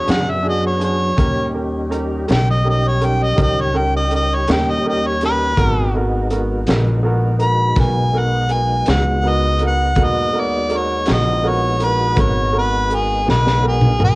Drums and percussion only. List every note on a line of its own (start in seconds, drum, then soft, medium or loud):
0.08 snare loud
0.08 closed hi-hat medium
0.81 closed hi-hat medium
1.18 kick medium
1.18 closed hi-hat medium
1.92 closed hi-hat soft
2.28 snare medium
2.28 closed hi-hat medium
3.02 closed hi-hat medium
3.38 kick loud
3.38 closed hi-hat medium
4.11 closed hi-hat medium
4.47 snare loud
4.47 closed hi-hat medium
5.21 snare soft
5.21 closed hi-hat medium
5.57 kick medium
5.57 closed hi-hat medium
6.31 closed hi-hat medium
6.67 snare medium
6.67 closed hi-hat medium
7.40 closed hi-hat medium
7.76 kick loud
7.76 snare soft
7.76 closed hi-hat medium
8.49 closed hi-hat medium
8.86 snare loud
8.86 closed hi-hat medium
9.59 closed hi-hat medium
9.95 kick loud
9.95 closed hi-hat medium
10.69 closed hi-hat medium
11.06 snare loud
11.06 closed hi-hat medium
11.80 closed hi-hat medium
12.16 kick loud
12.16 closed hi-hat medium
12.91 closed hi-hat medium
13.29 snare medium
13.47 snare medium
13.81 mid tom medium
14.00 mid tom medium